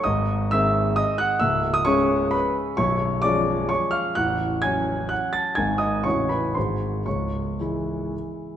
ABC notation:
X:1
M:3/4
L:1/16
Q:1/4=128
K:C#m
V:1 name="Grand piano"
[dd']4 [ee']4 [dd']2 [ff']2 | [ee']3 d' [cc']4 [Bb]2 z2 | [cc']4 [=d=d']4 [cc']2 [^e^e']2 | [ff']4 [gg']4 [ff']2 [aa']2 |
[gg']2 [dd']2 [cc']2 [Bb]2 [^B^b]4 | [cc']8 z4 |]
V:2 name="Grand piano" clef=bass
[G,,,G,,]4 [D,G,^B,]8 | [C,,,C,,]4 [C,G,C]8 | [B,,,,B,,,]4 [^E,G,C]8 | [A,,,,A,,,]4 [F,C]8 |
[G,,,G,,D,^B,D]4 [A,,,,A,,,C,CF]4 [G,,,G,,D,G,F]4 | [C,,,C,,]4 [E,G,E]8 |]